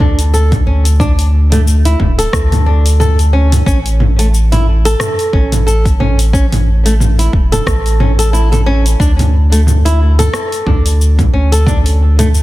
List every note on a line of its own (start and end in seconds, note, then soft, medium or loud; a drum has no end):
0.00 0.62 D2 medium
0.00 0.18 D4 medium
0.00 kick loud
0.00 mid tom medium
0.19 open hi-hat medium
0.19 cabasa medium
0.34 0.51 A4 medium
0.34 cabasa medium
0.52 kick loud
0.52 mid tom medium
0.52 open hi-hat soft
0.52 cabasa soft
0.67 1.95 D2 medium
0.67 0.85 C#4 medium
0.85 open hi-hat medium
0.85 cabasa medium
1.00 1.11 D4 loud
1.00 kick loud
1.00 mid tom medium
1.00 cabasa medium
1.19 open hi-hat soft
1.19 cabasa soft
1.52 1.60 A3 medium
1.52 mid tom medium
1.52 open hi-hat medium
1.52 cabasa medium
1.67 cabasa medium
1.85 1.99 E4 medium
1.85 open hi-hat soft
1.85 cabasa soft
2.00 2.27 D1 medium
2.00 kick loud
2.00 mid tom medium
2.18 2.65 A4 loud
2.18 open hi-hat medium
2.18 cabasa medium
2.33 3.62 D2 medium
2.33 kick loud
2.33 cross-stick medium
2.33 cabasa medium
2.52 mid tom medium
2.52 open hi-hat soft
2.52 cabasa soft
2.66 2.84 D4 medium
2.86 open hi-hat medium
2.86 cabasa medium
3.00 3.18 A4 medium
3.00 mid tom medium
3.00 cabasa medium
3.19 open hi-hat soft
3.19 cabasa soft
3.33 3.51 C#4 medium
3.52 mid tom medium
3.52 open hi-hat medium
3.52 cabasa medium
3.66 4.95 A1 loud
3.66 3.77 C#4 loud
3.66 kick loud
3.66 cabasa medium
3.86 open hi-hat soft
3.86 cabasa soft
4.00 mid tom medium
4.19 4.27 A3 medium
4.19 open hi-hat medium
4.19 cabasa medium
4.34 cabasa medium
4.52 4.66 E4 medium
4.52 mid tom medium
4.52 open hi-hat soft
4.52 cabasa soft
4.85 5.32 A4 loud
4.85 open hi-hat medium
4.85 cabasa medium
5.00 cross-stick medium
5.00 mid tom medium
5.00 cabasa medium
5.19 open hi-hat soft
5.19 cabasa soft
5.33 5.95 A1 medium
5.33 5.51 C#4 medium
5.33 kick loud
5.52 mid tom medium
5.52 open hi-hat medium
5.52 cabasa medium
5.67 5.85 A4 medium
5.67 cabasa medium
5.85 kick loud
5.85 open hi-hat soft
5.85 cabasa soft
6.00 7.29 A1 medium
6.00 6.18 C#4 medium
6.00 mid tom medium
6.19 open hi-hat medium
6.19 cabasa medium
6.33 6.44 C#4 loud
6.33 kick loud
6.33 cabasa medium
6.52 mid tom medium
6.52 open hi-hat soft
6.52 cabasa soft
6.85 6.94 A3 medium
6.85 open hi-hat medium
6.85 cabasa medium
7.00 mid tom medium
7.00 cabasa medium
7.19 7.33 E4 medium
7.19 open hi-hat soft
7.19 cabasa soft
7.33 7.61 E1 medium
7.33 kick loud
7.52 7.99 A4 medium
7.52 mid tom medium
7.52 open hi-hat medium
7.52 cabasa medium
7.67 8.95 A1 medium
7.67 kick loud
7.67 cross-stick medium
7.67 cabasa medium
7.86 open hi-hat soft
7.86 cabasa soft
8.00 8.11 C#4 medium
8.00 mid tom medium
8.19 8.32 A4 medium
8.19 open hi-hat soft
8.19 cabasa medium
8.33 8.51 E4 medium
8.33 cabasa medium
8.52 8.60 A4 medium
8.52 mid tom medium
8.52 open hi-hat soft
8.52 cabasa soft
8.66 8.83 C#4 loud
8.86 open hi-hat medium
8.86 cabasa medium
9.00 10.29 D2 loud
9.00 9.11 D4 loud
9.00 kick loud
9.00 cabasa medium
9.19 mid tom medium
9.19 open hi-hat soft
9.19 cabasa soft
9.52 9.60 A3 medium
9.52 open hi-hat medium
9.52 cabasa medium
9.67 mid tom medium
9.67 cabasa medium
9.85 9.99 E4 medium
9.85 open hi-hat soft
9.85 cabasa soft
10.19 10.65 A4 medium
10.19 mid tom medium
10.19 open hi-hat medium
10.19 cabasa medium
10.34 cross-stick medium
10.34 cabasa medium
10.52 open hi-hat soft
10.52 cabasa soft
10.66 11.29 D2 medium
10.66 10.85 D4 medium
10.66 kick loud
10.66 mid tom medium
10.86 open hi-hat medium
10.86 cabasa medium
11.01 cabasa medium
11.19 kick loud
11.19 mid tom medium
11.19 open hi-hat soft
11.19 cabasa soft
11.33 12.43 D2 medium
11.33 11.51 C#4 medium
11.52 11.66 A4 medium
11.52 open hi-hat soft
11.52 cabasa medium
11.66 11.77 D4 loud
11.66 kick loud
11.66 mid tom medium
11.66 cabasa medium
11.86 open hi-hat soft
11.86 cabasa soft
12.19 12.27 A3 medium
12.19 mid tom medium
12.19 open hi-hat medium
12.19 cabasa medium
12.35 cabasa medium